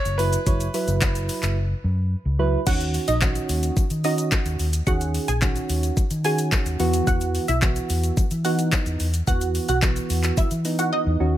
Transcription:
Already playing: grand piano C#5
0.05 fingered electric bass F#1, closed hi-hat, shaker
0.18 synth keys F#3 E4 B4, grand piano B4, open hi-hat, shaker
0.33 closed hi-hat, shaker
0.46 fingered electric bass F#1, synth keys F#3 E4 C#5, kick, closed hi-hat, shaker
0.60 closed hi-hat, shaker
0.74 synth keys F#3 E4 B4, open hi-hat, shaker
0.88 fingered electric bass F#1, closed hi-hat, shaker
1.01 kick, clap, closed hi-hat, shaker
1.15 closed hi-hat, shaker
1.29 open hi-hat, shaker
1.43 fingered electric bass F#1, clap, closed hi-hat, shaker
1.84 fingered electric bass F#2
2.25 fingered electric bass C#2
2.39 synth keys F#3 E4 B4
2.66 fingered electric bass D#2, synth keys D#3 C#4 F#4, synth pluck F#4 F#5, kick, crash, shaker
2.80 closed hi-hat, shaker
2.94 open hi-hat, shaker
3.08 fingered electric bass A#1, synth pluck D#4 D#5, closed hi-hat, shaker
3.21 synth keys D#3 C#4 F#4, kick, clap, shaker
3.35 closed hi-hat, shaker
3.49 fingered electric bass D#2, open hi-hat, shaker
3.63 closed hi-hat, shaker
3.77 kick, shaker
3.90 fingered electric bass D#3, closed hi-hat, shaker
4.04 synth keys D#3 C#4 F#4, synth pluck D#4 D#5, open hi-hat, shaker
4.18 closed hi-hat, shaker
4.32 kick, clap, shaker
4.46 fingered electric bass D#2, closed hi-hat, shaker
4.59 fingered electric bass D#2, open hi-hat, shaker
4.73 closed hi-hat, shaker
4.87 fingered electric bass D#2, synth keys D#3 C#4 G#4, synth pluck F#4 F#5, kick, shaker
5.00 closed hi-hat, shaker
5.14 open hi-hat, shaker
5.28 fingered electric bass A#1, synth pluck G#4 G#5, closed hi-hat, shaker
5.42 synth keys D#3 C#4 F#4, kick, clap, shaker
5.56 closed hi-hat, shaker
5.69 fingered electric bass D#2, open hi-hat, shaker
5.83 closed hi-hat, shaker
5.97 kick, shaker
6.11 fingered electric bass D#3, closed hi-hat, shaker
6.24 synth keys D#3 C#4 F#4, synth pluck G#4 G#5, open hi-hat, shaker
6.38 closed hi-hat, shaker
6.52 kick, clap, shaker
6.66 fingered electric bass D#2, closed hi-hat, shaker
6.79 fingered electric bass E2, synth keys E3 B3 F#4, open hi-hat, shaker
6.93 closed hi-hat, shaker
7.07 fingered electric bass E2, synth pluck F#4 F#5, kick, shaker
7.21 closed hi-hat, shaker
7.35 open hi-hat, shaker
7.48 fingered electric bass B1, synth pluck E4 E5, closed hi-hat, shaker
7.62 synth keys E3 B3 F#4, kick, clap, shaker
7.76 closed hi-hat, shaker
7.89 fingered electric bass E2, open hi-hat, shaker
8.03 closed hi-hat, shaker
8.17 kick, shaker
8.31 fingered electric bass E3, closed hi-hat, shaker
8.44 synth keys E3 B3 D#4, synth pluck F#4 F#5, open hi-hat, shaker
8.58 closed hi-hat, shaker
8.72 kick, clap, shaker
8.86 fingered electric bass E2, closed hi-hat, shaker
9.00 fingered electric bass E2, open hi-hat, shaker
9.14 closed hi-hat, shaker
9.27 fingered electric bass E2, synth keys E3 B3 F#4, synth pluck F#4 F#5, kick, shaker
9.41 closed hi-hat, shaker
9.55 open hi-hat, shaker
9.69 fingered electric bass B1, synth pluck F#4 F#5, closed hi-hat, shaker
9.82 synth keys E3 B3 F#4, kick, clap, shaker
9.96 closed hi-hat, shaker
10.10 fingered electric bass E2, open hi-hat, shaker
10.23 clap, closed hi-hat, shaker
10.37 synth pluck E4 E5, kick, shaker
10.51 fingered electric bass E3, closed hi-hat, shaker
10.65 synth keys E3 B3 D#4, open hi-hat, shaker
10.79 synth pluck F#4 F#5, closed hi-hat, shaker
10.93 synth pluck D#4 D#5
11.06 fingered electric bass E2
11.20 fingered electric bass D#2, synth keys D#3 C#4 F#4

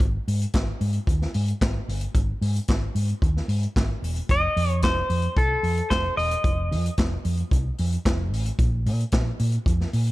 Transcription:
0.00 fingered electric bass G#1, kick, closed hi-hat
0.28 fingered electric bass G#2, open hi-hat
0.42 closed hi-hat
0.53 fingered electric bass G#1, kick, snare, clap, closed hi-hat
0.81 fingered electric bass G#2, open hi-hat
0.93 closed hi-hat
1.07 fingered electric bass D#2, kick, closed hi-hat
1.22 snare
1.34 fingered electric bass G#2, open hi-hat
1.48 closed hi-hat
1.61 fingered electric bass G#1, kick, snare, clap, closed hi-hat
1.88 fingered electric bass G1, open hi-hat
2.01 closed hi-hat
2.15 fingered electric bass G#1, kick, closed hi-hat
2.41 fingered electric bass G#2, open hi-hat
2.56 closed hi-hat
2.68 fingered electric bass G#1, kick, snare, clap, closed hi-hat
2.95 fingered electric bass G#2, open hi-hat
3.08 closed hi-hat
3.22 fingered electric bass D#2, kick, closed hi-hat
3.37 snare
3.48 fingered electric bass G#2, open hi-hat
3.63 closed hi-hat
3.76 fingered electric bass G#1, kick, snare, clap, closed hi-hat
4.02 fingered electric bass E1, open hi-hat
4.16 closed hi-hat
4.29 fingered electric bass F1, clean electric guitar D#5, kick, closed hi-hat
4.56 fingered electric bass F2, open hi-hat
4.70 closed hi-hat
4.82 fingered electric bass F1, clean electric guitar C5, kick, snare, clap, closed hi-hat
5.10 fingered electric bass F2, open hi-hat
5.22 closed hi-hat
5.37 fingered electric bass C2, clean electric guitar A4, kick, closed hi-hat
5.63 fingered electric bass F2, open hi-hat
5.77 closed hi-hat
5.90 fingered electric bass F1, clean electric guitar C5, kick, snare, clap, closed hi-hat
6.17 fingered electric bass E1, clean electric guitar D#5, open hi-hat
6.31 closed hi-hat
6.44 fingered electric bass F1, kick, closed hi-hat
6.71 fingered electric bass F2, open hi-hat
6.86 closed hi-hat
6.97 fingered electric bass F1, kick, snare, clap, closed hi-hat
7.25 fingered electric bass F2, open hi-hat
7.37 closed hi-hat
7.51 fingered electric bass C2, kick, closed hi-hat
7.78 fingered electric bass F2, open hi-hat
7.92 closed hi-hat
8.05 fingered electric bass F1, kick, snare, clap, closed hi-hat
8.33 fingered electric bass A1, open hi-hat
8.45 closed hi-hat
8.59 fingered electric bass A#1, kick, closed hi-hat
8.86 fingered electric bass A#2, open hi-hat
9.00 closed hi-hat
9.12 fingered electric bass A#1, kick, snare, clap, closed hi-hat
9.39 fingered electric bass A#2, open hi-hat
9.52 closed hi-hat
9.66 fingered electric bass F2, kick, closed hi-hat
9.81 snare
9.93 fingered electric bass A#2, open hi-hat
10.07 closed hi-hat

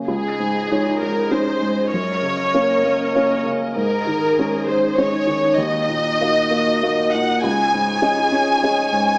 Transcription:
0.04 felt piano C#2, string section D#4 G#4 D#5, violin section G#4
0.39 felt piano G#2
0.72 felt piano G#3 D#4 C#5
1.00 felt piano G#3, violin section A#4
1.31 felt piano G#3 C#4 D#4, violin section C5
1.62 felt piano G#2
1.91 felt piano F#2, string section C#4 A#4, violin section C#5
2.22 felt piano C#3
2.54 felt piano A#3 C#4 C#5
2.84 felt piano A#3
3.15 felt piano A#3 C#4 C#5
3.45 felt piano C#3
3.76 felt piano G#2, string section D#4 G#4, violin section A#4
4.07 felt piano D#3
4.39 felt piano G#3 C#4 C#5
4.67 felt piano G#3, violin section C5
4.98 felt piano G#3 C#4 C#5, violin section C#5
5.27 felt piano D#3
5.58 felt piano D#2, string section F#4 D#5, violin section D#5
5.89 felt piano A#2
6.21 felt piano A#3 F#4 D#5
6.51 felt piano A#3
6.83 felt piano A#3 F#4 D#5
7.12 felt piano A#2, violin section F#5
7.41 felt piano C#2, string section G#4 C#5, violin section G#5
7.74 felt piano G#2
8.02 felt piano C#4 G#4 D#5
8.32 felt piano C#4
8.63 felt piano C#4 G#4 D#5
8.92 felt piano G#2

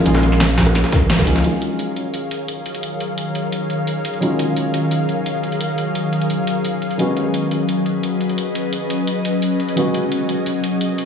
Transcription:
Already playing: felt piano F3 G#3 A#3 C#4 F4, ambient pad G#4 A#4 C#5 F5
0.04 sub bass A#1, felt piano F3 G#3 A#3 C#4 F4, closed hi-hat
0.15 snare, high bongo
0.23 closed hi-hat
0.32 snare
0.40 snare, closed hi-hat, high bongo
0.58 kick, snare, closed hi-hat
0.66 closed hi-hat, high bongo
0.75 snare, closed hi-hat
0.84 snare, closed hi-hat
0.92 kick, snare, closed hi-hat, high bongo
1.01 sub bass G#1
1.10 snare, closed hi-hat
1.19 kick, snare, high bongo
1.26 sub bass C#2, felt piano F3 G#3 A#3 C#4 F4, closed hi-hat
1.36 snare, closed hi-hat
1.43 ambient pad D#3 F#3 G#4 A#4 C#5 F5, felt piano F#3 G#3 C#4 D#4 F4, closed hi-hat
1.62 closed hi-hat
1.79 closed hi-hat
1.96 closed hi-hat
2.14 closed hi-hat
2.31 closed hi-hat
2.48 closed hi-hat
2.66 closed hi-hat
2.75 closed hi-hat
2.83 closed hi-hat
3.00 closed hi-hat
3.18 closed hi-hat
3.35 closed hi-hat
3.52 closed hi-hat
3.70 closed hi-hat
3.87 closed hi-hat
4.05 closed hi-hat
4.13 closed hi-hat
4.20 felt piano F#3 G#3 C#4 D#4 F4, closed hi-hat
4.39 closed hi-hat
4.57 closed hi-hat
4.74 closed hi-hat
4.91 closed hi-hat
5.09 closed hi-hat
5.26 closed hi-hat
5.43 closed hi-hat
5.52 closed hi-hat
5.61 closed hi-hat
5.78 closed hi-hat
5.95 closed hi-hat
6.13 closed hi-hat
6.22 closed hi-hat
6.30 closed hi-hat
6.47 closed hi-hat
6.65 closed hi-hat
6.82 closed hi-hat
6.91 closed hi-hat
6.98 felt piano F#3 G#3 B3 C#4 F#4, ambient pad C#4 B4 D#5, closed hi-hat
7.17 closed hi-hat
7.34 closed hi-hat
7.51 closed hi-hat
7.69 closed hi-hat
7.86 closed hi-hat
8.03 closed hi-hat
8.21 closed hi-hat
8.29 closed hi-hat
8.38 closed hi-hat
8.55 closed hi-hat
8.73 closed hi-hat
8.90 closed hi-hat
9.07 closed hi-hat
9.25 closed hi-hat
9.42 closed hi-hat
9.60 closed hi-hat
9.69 closed hi-hat
9.75 felt piano F#3 G#3 B3 C#4 F#4, ambient pad A#4, closed hi-hat
9.94 closed hi-hat
10.12 closed hi-hat
10.29 closed hi-hat
10.46 closed hi-hat
10.64 closed hi-hat
10.81 closed hi-hat
10.98 closed hi-hat

